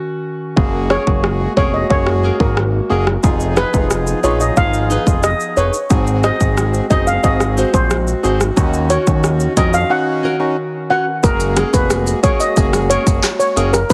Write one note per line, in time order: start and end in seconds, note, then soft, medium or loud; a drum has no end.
0.00 0.54 D#3 medium
0.00 0.54 C#4 medium
0.00 0.54 F#4 medium
0.56 0.98 F#1 loud
0.56 3.21 G#3 medium
0.56 1.03 A#3 medium
0.56 3.21 A#3 medium
0.56 3.21 F#4 medium
0.56 1.03 F#4 medium
0.56 1.03 G#4 loud
0.56 kick loud
0.90 1.05 C#4 medium
0.90 1.05 G#4 medium
0.90 1.06 A#4 medium
0.90 1.01 C#5 medium
0.90 cross-stick medium
1.07 1.48 F#1 medium
1.07 1.53 A#3 medium
1.07 1.53 F#4 medium
1.07 1.53 G#4 medium
1.07 kick medium
1.24 cross-stick medium
1.40 muted nylon-string guitar stroke medium
1.57 1.84 F1 medium
1.57 1.88 A#3 medium
1.57 1.71 C#4 medium
1.57 1.88 F#4 medium
1.57 1.88 G#4 medium
1.57 1.72 G#4 medium
1.57 1.72 A#4 medium
1.57 1.68 C#5 medium
1.57 kick medium
1.74 1.85 D#5 medium
1.90 2.31 F#1 medium
1.90 2.36 A#3 medium
1.90 2.36 F#4 medium
1.90 2.36 G#4 loud
1.90 2.01 C#5 medium
1.90 kick medium
2.07 cross-stick medium
2.23 2.38 C#4 medium
2.23 2.39 G#4 medium
2.23 2.39 A#4 medium
2.40 2.81 G#1 medium
2.40 2.56 A#3 medium
2.40 2.57 F#4 medium
2.40 2.57 G#4 medium
2.40 2.51 A#4 medium
2.40 kick medium
2.57 cross-stick medium
2.90 3.17 F#1 medium
2.90 3.06 A#3 medium
2.90 3.05 C#4 medium
2.90 3.07 F#4 medium
2.90 3.07 G#4 medium
2.90 3.05 G#4 medium
2.90 3.06 A#4 medium
3.07 cross-stick medium
3.23 3.64 F1 loud
3.23 5.74 F3 medium
3.23 5.74 B3 medium
3.23 3.69 D#4 medium
3.23 5.74 D#4 medium
3.23 3.70 F4 medium
3.23 5.74 G#4 medium
3.23 3.70 G#4 loud
3.23 kick loud
3.23 shaker medium
3.40 shaker medium
3.57 3.71 D#4 medium
3.57 3.72 G#4 medium
3.57 3.68 B4 medium
3.57 3.72 B4 loud
3.57 cross-stick loud
3.57 shaker soft
3.73 4.14 F1 loud
3.73 4.19 D#4 medium
3.73 4.20 F4 medium
3.73 4.20 G#4 medium
3.73 kick medium
3.73 shaker medium
3.91 cross-stick medium
3.91 shaker medium
4.07 muted nylon-string guitar stroke soft
4.07 shaker medium
4.23 4.51 A#1 medium
4.23 4.38 D#4 medium
4.23 4.54 D#4 medium
4.23 4.54 F4 medium
4.23 4.39 G#4 medium
4.23 4.55 G#4 medium
4.23 4.39 B4 medium
4.23 4.34 C#5 medium
4.23 shaker medium
4.41 4.51 D#5 medium
4.41 shaker medium
4.57 4.98 G#1 loud
4.57 5.03 D#4 medium
4.57 5.03 F4 medium
4.57 5.03 G#4 loud
4.57 5.04 F5 loud
4.57 kick medium
4.57 shaker medium
4.74 shaker soft
4.90 5.05 D#4 medium
4.90 5.05 G#4 medium
4.90 5.06 B4 medium
4.90 shaker medium
5.07 5.34 F1 medium
5.07 5.23 D#4 medium
5.07 5.23 F4 medium
5.07 5.24 G#4 medium
5.07 kick medium
5.07 shaker medium
5.23 5.34 D#5 medium
5.23 cross-stick loud
5.23 shaker medium
5.40 shaker soft
5.57 5.70 F1 medium
5.57 5.72 D#4 medium
5.57 5.72 G#4 medium
5.57 5.72 B4 loud
5.57 5.68 C#5 medium
5.57 shaker soft
5.74 shaker medium
5.90 6.31 G#1 loud
5.90 8.55 G#3 medium
5.90 6.36 C4 loud
5.90 8.54 C4 medium
5.90 6.36 F#4 medium
5.90 11.20 F#4 medium
5.90 6.37 G#4 loud
5.90 kick loud
5.90 shaker medium
6.07 shaker medium
6.23 6.38 D#4 medium
6.23 6.39 F#4 medium
6.23 6.39 C5 medium
6.23 6.35 D#5 medium
6.23 cross-stick medium
6.23 shaker soft
6.40 6.81 G#1 medium
6.40 6.86 C4 medium
6.40 6.86 F#4 medium
6.40 6.87 G#4 medium
6.40 kick medium
6.40 shaker medium
6.57 cross-stick medium
6.57 shaker medium
6.74 muted nylon-string guitar stroke medium
6.74 shaker medium
6.90 7.17 F#1 medium
6.90 7.21 C4 medium
6.90 7.05 D#4 medium
6.90 7.21 F#4 medium
6.90 7.05 F#4 medium
6.90 7.21 G#4 medium
6.90 7.06 C5 loud
6.90 7.01 D#5 medium
6.90 kick medium
6.90 shaker soft
7.07 7.18 F5 medium
7.07 shaker medium
7.24 7.64 G#1 medium
7.24 7.70 C4 loud
7.24 7.70 F#4 medium
7.24 7.70 G#4 loud
7.24 7.34 D#5 medium
7.24 kick medium
7.24 shaker medium
7.40 cross-stick medium
7.40 shaker medium
7.57 7.72 D#4 medium
7.57 7.72 F#4 loud
7.57 7.73 C5 medium
7.57 shaker medium
7.74 8.14 A#1 medium
7.74 7.90 C4 medium
7.74 7.90 F#4 medium
7.74 7.90 G#4 medium
7.74 7.85 C5 medium
7.74 kick medium
7.74 shaker medium
7.90 cross-stick medium
7.90 shaker medium
8.07 shaker soft
8.23 8.51 G#1 medium
8.23 8.40 C4 medium
8.23 8.38 D#4 medium
8.23 8.40 F#4 medium
8.23 8.39 F#4 medium
8.23 8.40 G#4 medium
8.23 8.39 C5 medium
8.23 shaker soft
8.41 cross-stick medium
8.41 shaker medium
8.56 8.98 D#2 loud
8.56 11.21 D#3 medium
8.56 9.03 C#4 medium
8.56 11.21 C#4 medium
8.56 9.03 D#4 medium
8.56 9.03 F#4 loud
8.56 kick loud
8.56 shaker medium
8.74 shaker medium
8.90 9.05 C#4 medium
8.90 9.05 F#4 medium
8.90 9.06 A#4 medium
8.90 9.01 C#5 medium
8.90 closed hi-hat medium
8.90 shaker soft
9.07 9.48 D#2 medium
9.07 9.53 C#4 medium
9.07 9.53 D#4 medium
9.07 9.53 F#4 medium
9.07 kick medium
9.07 shaker medium
9.24 cross-stick medium
9.24 shaker medium
9.40 muted nylon-string guitar stroke soft
9.40 shaker medium
9.57 9.84 F2 loud
9.57 9.72 C#4 medium
9.57 9.88 C#4 medium
9.57 9.88 D#4 medium
9.57 9.88 F#4 medium
9.57 9.72 F#4 medium
9.57 9.72 A#4 loud
9.57 9.68 D#5 medium
9.57 kick medium
9.57 closed hi-hat medium
9.57 shaker soft
9.74 9.85 F5 medium
9.74 shaker medium
9.90 10.36 C#4 medium
9.90 10.36 D#4 medium
9.90 10.36 F#4 loud
9.90 10.38 F#5 loud
10.23 10.38 C#4 medium
10.23 10.39 F#4 medium
10.23 10.39 A#4 loud
10.40 10.56 C#4 medium
10.40 10.57 D#4 medium
10.40 10.57 F#4 medium
10.90 11.05 C#4 medium
10.90 11.05 F#4 medium
10.90 11.06 A#4 medium
10.90 11.01 F#5 medium
11.23 11.64 F#1 loud
11.23 13.73 G#3 medium
11.23 11.69 A#3 medium
11.23 13.73 A#3 medium
11.23 11.69 F#4 medium
11.23 13.73 F#4 medium
11.23 11.70 G#4 loud
11.23 11.35 A#4 loud
11.23 kick loud
11.23 shaker medium
11.23 maracas medium
11.40 maracas medium
11.40 shaker medium
11.56 11.71 C#4 medium
11.56 11.72 G#4 medium
11.56 11.72 A#4 medium
11.56 cross-stick loud
11.56 closed hi-hat medium
11.56 shaker soft
11.73 12.14 F1 medium
11.73 12.19 A#3 medium
11.73 12.19 F#4 medium
11.73 12.20 G#4 medium
11.73 11.85 B4 medium
11.73 kick medium
11.73 maracas medium
11.73 shaker medium
11.90 cross-stick medium
11.90 maracas medium
11.90 shaker medium
12.07 muted nylon-string guitar stroke soft
12.07 shaker medium
12.07 maracas medium
12.23 12.54 A#3 medium
12.23 12.38 C#4 medium
12.23 12.54 F#4 medium
12.23 12.54 G#4 medium
12.23 12.39 G#4 loud
12.23 12.39 A#4 medium
12.23 12.34 C#5 medium
12.23 kick medium
12.23 closed hi-hat medium
12.23 shaker medium
12.40 12.51 D#5 medium
12.40 maracas medium
12.40 shaker medium
12.56 12.98 F#1 loud
12.56 13.03 A#3 medium
12.56 13.03 F#4 medium
12.56 13.03 G#4 loud
12.56 kick medium
12.56 shaker medium
12.56 maracas medium
12.73 cross-stick medium
12.73 maracas medium
12.73 shaker medium
12.89 13.05 C#4 medium
12.89 13.05 G#4 medium
12.89 13.06 A#4 loud
12.89 13.01 C#5 medium
12.89 closed hi-hat medium
12.89 shaker medium
13.06 13.20 F#1 medium
13.06 13.23 A#3 medium
13.06 13.23 F#4 medium
13.06 13.23 G#4 medium
13.06 kick loud
13.06 maracas medium
13.06 shaker medium
13.23 cross-stick loud
13.23 clap medium
13.23 shaker medium
13.23 maracas medium
13.39 13.50 C#5 medium
13.39 maracas medium
13.39 shaker soft
13.56 13.84 F#1 medium
13.56 13.73 A#3 medium
13.56 13.71 C#4 medium
13.56 13.73 F#4 medium
13.56 13.73 G#4 medium
13.56 13.72 G#4 medium
13.56 13.72 A#4 medium
13.56 closed hi-hat medium
13.56 shaker soft
13.73 13.84 A#4 medium
13.73 cross-stick medium
13.73 maracas medium
13.73 shaker medium
13.90 13.93 D#4 loud
13.90 13.93 F4 medium
13.90 13.93 B4 loud
13.90 shaker medium